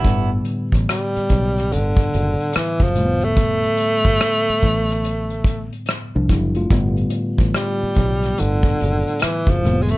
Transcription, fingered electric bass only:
X:1
M:4/4
L:1/16
Q:"Swing 16ths" 1/4=72
K:G
V:1 name="Fingered electric bass" clef=bass
G,,,2 z A,,, z2 B,,,2 G,,,2 F,,, z2 F,,, =F,,,2- | =F,,,2 z G,,, z2 A,,,4- A,,, z2 C,, ^F,,,2 | G,,,2 z A,,, z2 B,,,2 G,,,2 F,,, z2 F,,, =F,,,2 |]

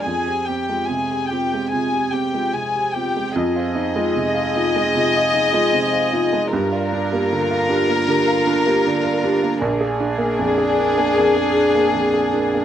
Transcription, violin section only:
X:1
M:4/4
L:1/8
Q:1/4=76
K:Fdor
V:1 name="Violin section"
a g a g a g a g | e8 | B8 | A8 |]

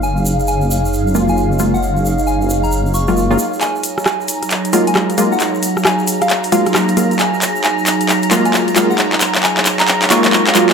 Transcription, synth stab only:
X:1
M:4/4
L:1/16
Q:"Swing 16ths" 1/4=134
K:F#
V:1 name="Synth stab"
z8 z2 [F,G,A,E]4 [F,G,A,E] z | z8 z3 [F,G,A,E]2 [F,G,A,E] z2 | z8 z2 [F,G,A,E]4 [F,G,A,E] z | z8 z2 [F,G,A,E]4 [F,G,A,E] z |
z8 z2 [F,G,A,E]4 [F,G,A,E] z | z8 z2 [F,G,A,E]4 [F,G,A,E] z |]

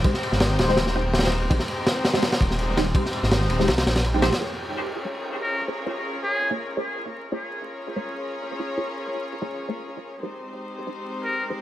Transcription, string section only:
X:1
M:4/4
L:1/16
Q:1/4=165
K:Bbdor
V:1 name="String section"
[A,CEGc]12 [A,CEGc]4 | [A,CEGc]12 [A,CEGc]4 | [A,CEGc]12 z [CEGAc]3 | [DFABd]16- |
[DFABd]16 | [DFABd]16- | [DFABd]16 | [A,CEGc]16 |]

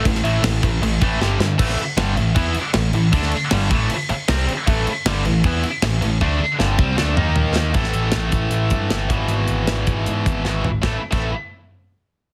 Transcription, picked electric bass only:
X:1
M:4/4
L:1/16
Q:1/4=156
K:Edor
V:1 name="Picked electric bass" clef=bass
A,,,2 A,,,2 A,,,2 A,,,2 A,,,2 A,,,2 G,,,2 G,,2 | A,,,2 z2 G,,,2 A,,,2 E,,2 z2 A,,,2 A,,,2 | D,,2 z2 G,,,2 A,,,2 z4 =C,,2 z2 | A,,,2 z2 G,,,2 A,,,2 E,,2 z2 A,,,2 A,,,2 |
D,,2 z2 G,,,2 =C,,2 D,,2 ^D,,6 | A,,,2 A,,,2 A,,,2 A,,,2 A,,,2 G,,2 G,,,2 ^G,,,2 | ^G,,,2 G,,,2 G,,,2 G,,,2 ^G,,2 G,,,2 G,,,2 G,,,2 | A,,, z2 A,,,2 z8 z3 |]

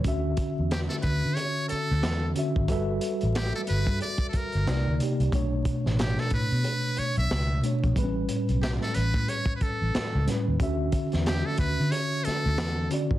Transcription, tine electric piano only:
X:1
M:4/4
L:1/8
Q:"Swing 16ths" 1/4=91
K:D
V:1 name="Tine electric piano"
[D,CFe]3 z4 [D,CFe] | [G,FABe]3 z3 [=C,_B,_Ed] [C,B,EG] | [B,,A,Dc]3 z4 [B,,A,Dc] | [A,,G,B,CB]3 z4 [A,,G,CB] |
[D,CFe]3 z4 [D,CFd] |]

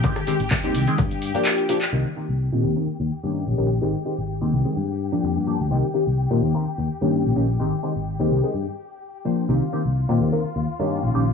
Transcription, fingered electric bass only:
X:1
M:4/4
L:1/16
Q:"Swing 16ths" 1/4=127
K:Cm
V:1 name="Fingered electric bass" clef=bass
z3 A,,,2 E,, C,, z G,,3 z4 z | C,, z2 C,,2 B,, E,, z2 E,, z G,,2 B,,, B,,,2 | A,,, z2 A,,,2 E,, C,, z G,,3 z F,, G,,2 D,, | C,, z2 C,,2 B,, E,, z2 E,, z G,,2 B,,, B,,,2 |
A,,, z2 A,,,2 E,, C,, z G,, z6 z | C,, z2 C,,2 B,, E,, z2 E,, z G,,2 B,,, B,,,2 |]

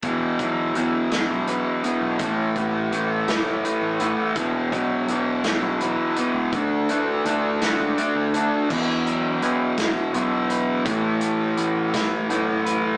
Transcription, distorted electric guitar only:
X:1
M:6/8
L:1/8
Q:3/8=55
K:Amix
V:1 name="Distorted electric guitar" clef=bass
[E,,B,,E,] [E,,B,,E,] [E,,B,,E,] [E,,B,,E,] [E,,B,,E,] [E,,B,,E,] | [A,,E,A,] [A,,E,A,] [A,,E,A,] [A,,E,A,] [A,,E,A,] [A,,E,A,] | [E,,B,,E,] [E,,B,,E,] [E,,B,,E,] [E,,B,,E,] [E,,B,,E,] [E,,B,,E,] | [D,A,D] [D,A,D] [D,A,D] [D,A,D] [D,A,D] [D,A,D] |
[E,,B,,E,]4 [E,,B,,E,]2 | [A,,E,A,]4 [A,,E,A,]2 |]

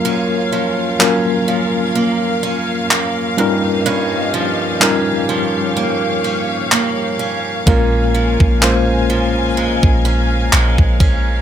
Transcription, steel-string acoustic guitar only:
X:1
M:4/4
L:1/8
Q:"Swing 16ths" 1/4=63
K:Bbm
V:1 name="Steel-string acoustic guitar"
[G,,D] F, D F, B, D B, =G,, | [=G,,D] F, D F, B, D B, D | [B,,D] F, D F, A, D A, D |]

